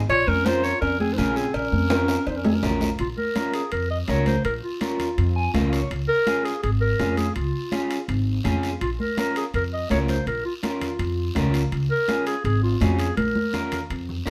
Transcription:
0.09 upright bass A#1, clarinet F4, alto saxophone C#5, cowbell, high conga, long guiro
0.27 upright bass F2, clarinet C#4, alto saxophone A#4, high conga
0.45 clean electric guitar C#4 F4 A#4, clarinet F4, alto saxophone C5, cowbell, high conga, short guiro
0.64 clarinet F4, alto saxophone C#5, short guiro
0.81 upright bass F2, clarinet C#4, alto saxophone A#4, cowbell, high conga, long guiro
1.00 clarinet C4, alto saxophone G#4, high conga
1.13 clarinet D#4, alto saxophone C5
1.18 upright bass A#1, clean electric guitar C#4 F4 G#4, clarinet C#4, alto saxophone A#4, cowbell, high conga, short guiro
1.36 clarinet C4, alto saxophone G#4, short guiro
1.54 upright bass A#1, clarinet C#4, alto saxophone A#4, cowbell, high conga, long guiro
1.72 upright bass F2, high conga
1.90 clean electric guitar C#4 F4 A#4, cowbell, high conga, high timbale, short guiro
2.08 high timbale, short guiro
2.27 upright bass F2, clarinet D#4, alto saxophone C5, cowbell, high conga, long guiro
2.36 clarinet C#4, alto saxophone A#4
2.44 clarinet C4, alto saxophone G#4, high conga, low timbale
2.54 clarinet C#4, alto saxophone A#4
2.63 upright bass A#1, clean electric guitar C#4 F4 A#4, cowbell, low timbale, short guiro
2.70 low conga
2.81 low conga, low timbale, short guiro
2.99 upright bass A#1, clarinet F4, high conga, high timbale, long guiro
3.18 clarinet A#4, high conga
3.35 clean electric guitar C#4 F4 A#4, high conga, high timbale, short guiro
3.54 clarinet G#4, high timbale, short guiro
3.72 upright bass F2, clarinet A#4, high conga, high timbale, long guiro
3.91 clarinet D#5
4.08 upright bass C#2, clean electric guitar C#4 F4 A#4, clarinet C#5, high conga, high timbale, low timbale, short guiro
4.26 clarinet C5, high conga, high timbale, short guiro
4.45 upright bass A#1, clarinet A#4, high conga, high timbale, long guiro
4.63 clarinet F4
4.81 clean electric guitar C#4 F4 A#4, clarinet F4, high conga, high timbale, short guiro
5.00 low conga, high timbale, short guiro
5.18 upright bass F2, high conga, high timbale, long guiro
5.36 clean electric guitar G#5
5.54 upright bass C#2, clean electric guitar C#4 F4 A#4 F5, high conga, low conga, high timbale, low timbale, short guiro
5.72 clean electric guitar C#5, high timbale, short guiro
5.91 upright bass C#2, high conga, high timbale, long guiro
6.08 clarinet A#4
6.27 clean electric guitar C#4 F4 G#4, high conga, high timbale, short guiro
6.45 clarinet G#4, high timbale, short guiro
6.63 upright bass G#1, clarinet G#4, high conga, high timbale, long guiro
6.81 clarinet A#4
6.99 upright bass F2, clean electric guitar C#4 F4 G#4, high conga, high timbale, low timbale, short guiro
7.17 clarinet G#4, high conga, high timbale, short guiro
7.35 upright bass C#2, clarinet F4, high conga, high timbale, long guiro
7.72 clean electric guitar C#4 F4 G#4, high conga, high timbale, short guiro
7.91 high timbale, short guiro
8.08 upright bass G#1, high conga, high timbale, long guiro
8.44 upright bass F2, clean electric guitar C#4 F4 G#4, high conga, low conga, high timbale, short guiro
8.63 high timbale, short guiro
8.81 upright bass A#1, clarinet F4, high conga, high timbale, long guiro
9.00 clarinet A#4, high conga
9.18 clean electric guitar C#4 F4 A#4, clarinet A#4, high conga, high timbale, short guiro
9.36 clarinet G#4, high timbale, short guiro
9.54 upright bass F2, clarinet A#4, high conga, high timbale, long guiro
9.74 clarinet D#5
9.90 upright bass C#2, clean electric guitar C#4 F4 A#4, clarinet C#5, high conga, high timbale, low timbale, short guiro
10.08 clarinet C5, high conga, high timbale, short guiro
10.27 upright bass A#1, clarinet A#4, high conga, high timbale, long guiro
10.45 clarinet F4
10.63 clean electric guitar C#4 F4 A#4, clarinet F4, high conga, high timbale, short guiro
10.81 low conga, high timbale, short guiro
10.99 upright bass F2, high conga, high timbale, long guiro
11.35 upright bass C#2, clean electric guitar C#4 F4 A#4, high conga, low conga, high timbale, low timbale, short guiro
11.54 high timbale, short guiro
11.72 upright bass C#2, high conga, high timbale, long guiro
11.91 clarinet A#4
12.08 clean electric guitar C#4 F4 G#4, high conga, high timbale, short guiro
12.26 clarinet G#4, high timbale, short guiro
12.44 upright bass G#1, clarinet G#4, high conga, high timbale, long guiro
12.63 clarinet F4
12.81 upright bass F2, clean electric guitar C#4 F4 G#4, clarinet F#4, high conga, high timbale, low timbale, short guiro
12.99 clarinet G#4, high timbale, short guiro
13.17 upright bass A#1, clarinet A#4, high conga, high timbale, long guiro
13.36 high conga
13.53 clean electric guitar C#4 F4 A#4, low conga, high timbale, short guiro
13.72 low conga, high timbale, short guiro
13.90 upright bass F2, high timbale, long guiro
14.09 low conga
14.26 upright bass C#2, clean electric guitar C#4 F4 A#4, short guiro

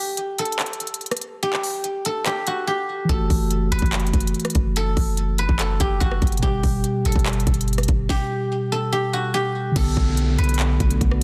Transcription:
Already playing: guzheng G4 A4 B4
0.17 closed hi-hat
0.38 guzheng A4, closed hi-hat
0.45 closed hi-hat
0.52 closed hi-hat
0.59 clap, closed hi-hat
0.66 closed hi-hat
0.73 closed hi-hat
0.80 closed hi-hat
0.87 closed hi-hat
0.94 closed hi-hat
1.01 closed hi-hat
1.06 closed hi-hat
1.11 cross-stick, closed hi-hat
1.17 closed hi-hat
1.21 closed hi-hat
1.43 guzheng G4, closed hi-hat
1.53 clap
1.63 open hi-hat
1.84 closed hi-hat
2.05 guzheng A4, closed hi-hat
2.26 guzheng G4, cross-stick, clap, closed hi-hat
2.47 guzheng F#4, closed hi-hat
2.67 guzheng G4
3.05 tine electric piano E3
3.09 808-style bass F#1, tine electric piano A3, guzheng A4, kick, closed hi-hat
3.14 tine electric piano F#4
3.30 808-style bass F#1, kick, open hi-hat
3.51 closed hi-hat
3.72 808-style bass F#1, guzheng B4, closed hi-hat
3.79 808-style bass F#1, kick, closed hi-hat
3.86 closed hi-hat
3.93 clap, closed hi-hat
4.00 closed hi-hat
4.07 closed hi-hat
4.13 808-style bass F#1, kick, closed hi-hat
4.20 closed hi-hat
4.27 closed hi-hat
4.34 closed hi-hat
4.40 closed hi-hat
4.45 cross-stick, closed hi-hat
4.50 closed hi-hat
4.55 808-style bass F#1, kick, closed hi-hat
4.76 guzheng A4, closed hi-hat
4.97 808-style bass F#1, kick, open hi-hat
5.17 closed hi-hat
5.38 guzheng B4, closed hi-hat
5.49 808-style bass F#1, kick
5.59 guzheng A4, clap, closed hi-hat
5.80 808-style bass F#1, guzheng G4, kick, closed hi-hat
6.00 808-style bass F#1, guzheng F#4, kick, closed hi-hat
6.12 cross-stick
6.22 808-style bass F#1, kick, closed hi-hat
6.27 closed hi-hat
6.32 closed hi-hat
6.37 tine electric piano B2, closed hi-hat
6.42 808-style bass G1, tine electric piano G3, guzheng G4, kick, closed hi-hat
6.47 tine electric piano G4
6.63 808-style bass G1, kick, open hi-hat
6.84 closed hi-hat
7.05 808-style bass G1, guzheng A4, closed hi-hat
7.12 808-style bass G1, kick, closed hi-hat
7.19 closed hi-hat
7.26 clap, closed hi-hat
7.33 closed hi-hat
7.40 closed hi-hat
7.47 808-style bass G1, kick, closed hi-hat
7.54 closed hi-hat
7.61 closed hi-hat
7.68 closed hi-hat
7.73 closed hi-hat
7.78 cross-stick, closed hi-hat
7.83 closed hi-hat
7.88 808-style bass G1, kick, closed hi-hat
8.09 guzheng G4, kick, snare
8.72 guzheng A4
8.93 guzheng G4
9.13 guzheng F#4
9.34 guzheng G4
9.72 tine electric piano D3
9.76 808-style bass B1, ambient pad D3 A3 B3 F#4, tine electric piano B3, guzheng A4, kick, closed hi-hat, crash, downlifter
9.81 tine electric piano A4
9.97 808-style bass B1, kick
10.17 closed hi-hat
10.39 808-style bass B1, guzheng B4, closed hi-hat
10.44 closed hi-hat
10.49 closed hi-hat
10.54 closed hi-hat
10.59 clap, closed hi-hat
10.80 808-style bass B1, kick, closed hi-hat
10.91 closed hi-hat
11.01 808-style bass B1, kick, closed hi-hat
11.11 cross-stick

